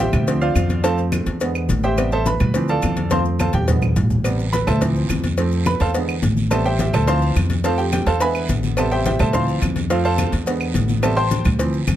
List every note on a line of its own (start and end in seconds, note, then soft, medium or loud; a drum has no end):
0.00 0.24 C3 medium
0.00 0.25 G3 medium
0.00 0.25 B3 medium
0.00 0.39 G4 medium
0.00 0.39 C5 medium
0.00 0.39 E5 medium
0.00 0.39 G5 medium
0.13 0.52 D2 medium
0.13 cowbell medium
0.13 high conga soft
0.13 low conga medium
0.13 claves medium
0.13 maracas soft
0.27 0.81 D3 medium
0.27 0.81 F3 medium
0.27 0.82 C4 medium
0.27 cowbell loud
0.27 high conga soft
0.27 maracas medium
0.41 0.81 F4 medium
0.41 0.81 C5 medium
0.41 0.81 D5 medium
0.41 0.81 F5 medium
0.41 high conga soft
0.41 maracas soft
0.55 1.21 F2 loud
0.55 cowbell medium
0.55 high conga medium
0.55 claves medium
0.55 maracas medium
0.69 cowbell medium
0.69 high conga medium
0.69 maracas soft
0.83 1.38 F3 medium
0.83 1.38 A3 medium
0.83 1.38 C4 medium
0.83 0.98 A4 medium
0.83 0.98 C5 medium
0.83 0.98 F5 medium
0.83 0.98 A5 loud
0.83 cowbell loud
0.83 high conga soft
0.83 maracas medium
0.98 high conga soft
0.98 maracas soft
1.12 cowbell medium
1.12 high conga loud
1.12 claves medium
1.12 maracas medium
1.26 1.66 E2 medium
1.26 cowbell medium
1.26 high conga soft
1.26 maracas soft
1.41 1.95 D3 medium
1.41 1.95 G#3 medium
1.41 1.95 B3 medium
1.41 cowbell loud
1.41 high conga soft
1.41 maracas medium
1.55 high conga soft
1.55 claves medium
1.55 maracas soft
1.69 2.35 A1 loud
1.69 cowbell medium
1.69 high conga medium
1.69 maracas medium
1.83 2.10 G4 medium
1.83 2.10 C5 medium
1.83 2.10 E5 medium
1.83 2.10 G5 medium
1.83 high conga medium
1.83 maracas soft
1.97 2.16 C3 medium
1.97 2.16 G3 medium
1.97 2.17 B3 medium
1.97 cowbell loud
1.97 high conga soft
1.97 claves medium
1.97 maracas medium
2.12 2.26 A4 medium
2.12 2.26 C5 medium
2.12 2.26 E5 medium
2.12 2.26 A5 loud
2.12 high conga soft
2.12 maracas soft
2.26 2.66 B4 medium
2.26 2.66 B5 medium
2.26 cowbell medium
2.26 high conga loud
2.26 maracas medium
2.40 2.80 D2 medium
2.40 cowbell medium
2.40 high conga soft
2.40 low conga medium
2.40 claves medium
2.40 maracas soft
2.54 3.09 E3 medium
2.54 3.09 F3 medium
2.54 3.09 C4 medium
2.54 cowbell loud
2.54 high conga soft
2.54 maracas medium
2.68 3.09 A4 medium
2.68 3.09 D5 medium
2.68 3.09 F5 medium
2.68 3.09 A5 loud
2.68 high conga soft
2.68 maracas soft
2.82 3.48 F2 loud
2.82 cowbell medium
2.82 high conga medium
2.82 claves medium
2.82 maracas medium
2.97 cowbell medium
2.97 high conga medium
2.97 maracas soft
3.11 3.65 F3 medium
3.11 3.65 A3 medium
3.11 3.66 C4 medium
3.11 3.20 C5 medium
3.11 3.20 F5 medium
3.11 3.20 A5 medium
3.11 3.20 C6 loud
3.11 cowbell loud
3.11 high conga medium
3.11 maracas medium
3.25 maracas soft
3.39 3.54 A4 medium
3.39 3.54 C5 medium
3.39 3.54 F5 medium
3.39 3.53 A5 medium
3.39 cowbell medium
3.39 high conga loud
3.39 claves medium
3.39 maracas medium
3.53 3.93 E2 medium
3.53 3.68 G4 medium
3.53 3.68 G5 medium
3.53 cowbell medium
3.53 low conga medium
3.53 maracas soft
3.68 3.87 D3 medium
3.68 3.87 G#3 medium
3.68 3.87 B3 medium
3.68 cowbell loud
3.68 low conga loud
3.68 maracas medium
3.82 low conga medium
3.82 claves medium
3.82 maracas soft
3.96 4.62 A1 loud
3.96 cowbell medium
3.96 low conga medium
3.96 maracas medium
4.10 low conga medium
4.10 maracas soft
4.24 4.43 C3 medium
4.24 4.44 G3 medium
4.24 4.44 B3 medium
4.24 cowbell loud
4.24 high conga soft
4.24 long guiro medium
4.24 claves medium
4.24 maracas medium
4.39 high conga soft
4.39 maracas soft
4.53 4.67 B4 medium
4.53 4.67 B5 loud
4.53 cowbell medium
4.53 high conga loud
4.53 short guiro medium
4.53 maracas medium
4.67 5.07 D2 loud
4.67 4.81 A4 medium
4.67 4.81 C5 medium
4.67 4.81 E5 medium
4.67 4.81 A5 medium
4.67 cowbell medium
4.67 high conga soft
4.67 low conga medium
4.67 short guiro medium
4.67 claves medium
4.67 maracas soft
4.81 5.21 E3 medium
4.81 5.22 F3 medium
4.81 5.22 C4 medium
4.81 cowbell loud
4.81 high conga soft
4.81 low conga medium
4.81 long guiro medium
4.81 maracas medium
4.96 high conga soft
4.96 maracas soft
5.09 5.75 F2 loud
5.09 cowbell medium
5.09 high conga medium
5.09 short guiro medium
5.09 claves medium
5.09 maracas medium
5.24 cowbell medium
5.24 high conga medium
5.24 short guiro medium
5.24 maracas soft
5.38 5.92 F3 medium
5.38 5.92 A3 medium
5.38 5.92 C4 medium
5.38 cowbell loud
5.38 high conga soft
5.38 long guiro medium
5.38 maracas medium
5.52 maracas soft
5.66 5.80 B4 medium
5.66 5.80 B5 loud
5.66 cowbell medium
5.66 high conga loud
5.66 short guiro medium
5.66 claves medium
5.66 maracas medium
5.80 6.20 E2 medium
5.80 5.89 A4 medium
5.80 5.89 C5 medium
5.80 5.89 F5 medium
5.80 5.89 A5 loud
5.80 cowbell medium
5.80 high conga soft
5.80 short guiro medium
5.80 maracas soft
5.94 6.13 D3 medium
5.94 6.13 G#3 medium
5.94 6.14 B3 medium
5.94 cowbell loud
5.94 high conga soft
5.94 long guiro medium
5.94 maracas medium
6.08 high conga soft
6.08 claves medium
6.08 maracas soft
6.22 6.88 A1 loud
6.22 cowbell medium
6.22 high conga medium
6.22 short guiro medium
6.22 maracas medium
6.37 high conga medium
6.37 short guiro medium
6.37 maracas soft
6.50 6.70 C3 medium
6.50 6.70 G3 medium
6.50 6.70 B3 medium
6.50 6.65 A4 medium
6.50 6.65 C5 medium
6.50 6.64 E5 medium
6.50 6.65 A5 medium
6.50 cowbell loud
6.50 high conga soft
6.50 long guiro medium
6.50 claves medium
6.50 maracas medium
6.65 6.79 G4 medium
6.65 6.79 C5 medium
6.65 6.79 E5 medium
6.65 6.78 G5 loud
6.65 maracas soft
6.79 6.94 G4 medium
6.79 6.93 C5 medium
6.79 6.92 E5 medium
6.79 6.93 G5 medium
6.79 cowbell medium
6.79 high conga loud
6.79 short guiro medium
6.79 maracas medium
6.93 7.33 D2 medium
6.93 7.08 A4 medium
6.93 7.06 C5 medium
6.93 7.07 E5 medium
6.93 7.07 A5 loud
6.93 cowbell medium
6.93 high conga soft
6.93 low conga medium
6.93 short guiro medium
6.93 claves medium
6.93 maracas soft
7.07 7.48 E3 medium
7.07 7.48 F3 medium
7.07 7.48 C4 medium
7.07 7.34 C5 medium
7.07 7.34 F5 medium
7.07 7.34 A5 loud
7.07 7.34 C6 loud
7.07 cowbell loud
7.07 high conga soft
7.07 long guiro medium
7.07 maracas medium
7.22 maracas soft
7.36 8.01 F2 loud
7.36 cowbell medium
7.36 high conga medium
7.36 short guiro medium
7.36 claves medium
7.36 maracas medium
7.50 cowbell medium
7.50 high conga medium
7.50 short guiro medium
7.50 maracas soft
7.64 8.04 F3 medium
7.64 8.05 A3 medium
7.64 8.05 C4 medium
7.64 7.78 A4 medium
7.64 7.78 C5 medium
7.64 7.78 F5 medium
7.64 7.78 A5 medium
7.64 cowbell loud
7.64 high conga soft
7.64 long guiro medium
7.64 maracas medium
7.78 7.92 G4 medium
7.78 7.91 G5 medium
7.78 high conga soft
7.78 maracas soft
7.93 8.07 G4 medium
7.93 8.06 G5 medium
7.93 cowbell medium
7.93 high conga loud
7.93 short guiro medium
7.93 claves medium
7.93 maracas medium
8.06 8.46 E2 medium
8.06 8.21 A4 medium
8.06 8.20 C5 medium
8.06 8.21 F5 medium
8.06 8.20 A5 loud
8.06 cowbell medium
8.06 high conga soft
8.06 short guiro medium
8.06 maracas soft
8.20 8.75 D3 medium
8.20 8.75 G#3 medium
8.20 8.75 B3 medium
8.20 8.48 B4 medium
8.20 8.48 E5 medium
8.20 8.48 G#5 medium
8.20 8.48 B5 loud
8.20 cowbell loud
8.20 high conga soft
8.20 long guiro medium
8.20 maracas medium
8.35 high conga soft
8.35 claves medium
8.35 maracas soft
8.49 9.14 A1 loud
8.49 cowbell medium
8.49 high conga medium
8.49 short guiro medium
8.49 maracas medium
8.63 high conga medium
8.63 short guiro medium
8.63 maracas soft
8.77 9.31 C3 medium
8.77 9.31 G3 soft
8.77 9.32 B3 medium
8.77 8.92 A4 medium
8.77 8.90 C5 medium
8.77 8.91 E5 medium
8.77 8.91 A5 medium
8.77 cowbell loud
8.77 high conga soft
8.77 long guiro medium
8.77 claves medium
8.77 maracas medium
8.92 9.05 G4 medium
8.92 9.05 C5 medium
8.92 9.05 E5 medium
8.92 9.05 G5 loud
8.92 high conga soft
8.92 maracas soft
9.05 9.20 G4 medium
9.05 9.19 C5 medium
9.05 9.19 E5 medium
9.05 9.20 G5 medium
9.05 cowbell medium
9.05 high conga loud
9.05 short guiro medium
9.05 maracas medium
9.19 9.59 D2 medium
9.19 9.34 A4 medium
9.19 9.33 C5 medium
9.19 9.34 E5 medium
9.19 9.33 A5 loud
9.19 cowbell medium
9.19 high conga soft
9.19 low conga medium
9.19 short guiro medium
9.19 claves medium
9.19 maracas soft
9.33 9.74 E3 medium
9.33 9.74 F3 soft
9.33 9.75 C4 medium
9.33 9.61 C5 medium
9.33 9.61 F5 medium
9.33 9.61 A5 medium
9.33 9.60 C6 loud
9.33 cowbell loud
9.33 high conga soft
9.33 low conga medium
9.33 long guiro medium
9.33 maracas medium
9.48 high conga soft
9.48 maracas soft
9.62 10.27 F2 loud
9.62 cowbell medium
9.62 high conga medium
9.62 short guiro medium
9.62 claves medium
9.62 maracas medium
9.76 cowbell medium
9.76 high conga medium
9.76 short guiro medium
9.76 maracas soft
9.90 10.44 F3 medium
9.90 10.44 A3 medium
9.90 10.44 C4 medium
9.90 10.04 F4 medium
9.90 10.04 A4 medium
9.90 10.04 C5 medium
9.90 10.04 F5 medium
9.90 cowbell loud
9.90 high conga soft
9.90 long guiro medium
9.90 maracas medium
10.05 10.31 A4 medium
10.05 10.31 C5 medium
10.05 10.31 F5 medium
10.05 10.31 A5 loud
10.05 maracas soft
10.18 cowbell medium
10.18 high conga loud
10.18 short guiro medium
10.18 claves medium
10.18 maracas medium
10.32 10.72 E2 loud
10.32 cowbell medium
10.32 high conga soft
10.32 short guiro medium
10.32 maracas soft
10.46 11.00 D3 medium
10.46 11.00 G#3 medium
10.46 11.01 B3 medium
10.46 cowbell loud
10.46 high conga soft
10.46 long guiro medium
10.46 maracas medium
10.61 high conga soft
10.61 claves medium
10.61 maracas soft
10.74 11.40 A1 loud
10.74 cowbell medium
10.74 high conga medium
10.74 short guiro medium
10.74 maracas medium
10.88 high conga medium
10.88 short guiro medium
10.88 maracas soft
11.02 11.22 C3 medium
11.02 11.22 G3 medium
11.02 11.22 B3 medium
11.02 11.17 A4 medium
11.02 11.15 C5 medium
11.02 11.17 E5 medium
11.02 11.15 A5 medium
11.02 cowbell loud
11.02 high conga soft
11.02 long guiro medium
11.02 claves medium
11.02 maracas medium
11.17 11.43 C5 medium
11.17 11.43 G5 medium
11.17 11.43 A5 medium
11.17 11.43 C6 loud
11.17 high conga soft
11.17 maracas soft
11.31 cowbell medium
11.31 high conga loud
11.31 short guiro medium
11.31 maracas medium
11.45 11.85 D2 medium
11.45 cowbell medium
11.45 high conga soft
11.45 low conga medium
11.45 short guiro medium
11.45 claves medium
11.45 maracas soft
11.59 11.78 E3 medium
11.59 11.78 F3 medium
11.59 11.79 C4 medium
11.59 cowbell loud
11.59 high conga soft
11.59 long guiro medium
11.59 maracas medium
11.73 high conga soft
11.73 maracas soft
11.87 11.96 F2 loud
11.87 cowbell medium
11.87 high conga medium
11.87 short guiro medium
11.87 claves medium
11.87 maracas medium